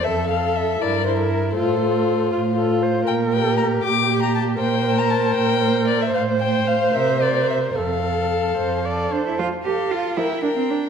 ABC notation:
X:1
M:6/8
L:1/16
Q:3/8=78
K:F
V:1 name="Violin"
e2 f2 e2 d2 c A B2 | c8 z4 | g2 g2 b2 d'3 b a2 | g3 b a2 g4 d e |
f2 g2 f2 e2 d2 e2 | f8- f2 z2 | z2 f4 g2 g4 |]
V:2 name="Viola"
A6 B6 | A6 F2 A2 c2 | B6 G6 | B12 |
c12 | A6 c2 d2 c2 | F,6 F,6 |]
V:3 name="Violin"
A2 A4 E2 E4 | F2 F6 F4 | z2 G6 G4 | c2 c6 c4 |
z2 c4 B2 B4 | z2 A6 A4 | z2 A4 B2 B4 |]
V:4 name="Cello" clef=bass
F,,6 G,,6 | A,,6 A,,6 | B,,6 B,,6 | B,,6 B,,6 |
A,,6 C,6 | F,,6 F,,4 D E | F2 G2 F2 E2 D C D2 |]